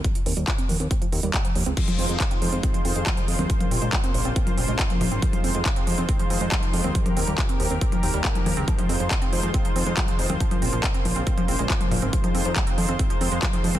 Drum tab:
CC |----------------|x---------------|----------------|----------------|
HH |xxoxxxoxxxoxxxox|xxoxxxoxxxoxxxox|xxoxxxoxxxoxxxox|xxoxxxoxxxoxxxox|
CP |----x-------x---|----x-------x---|----x-------x---|----x-------x---|
CG |----------------|-o----------o--o|-o-------o---oo-|-o----------o--o|
BD |o---o---o---o---|o---o---o---o---|o---o---o---o---|o---o---o---o---|

CC |----------------|----------------|----------------|----------------|
HH |xxoxxxoxxxoxxxox|xxoxxxoxxxoxxxox|xxoxxxoxxxoxxxox|xxoxxxoxxxoxxxox|
CP |----x-------x---|----x-------x---|----x-------x---|----x-------x---|
CG |-o-------o---oo-|-o----------o--o|-o-------o---oo-|-o----------o--o|
BD |o---o---o---o---|o---o---o---o---|o---o---o---o---|o---o---o---o---|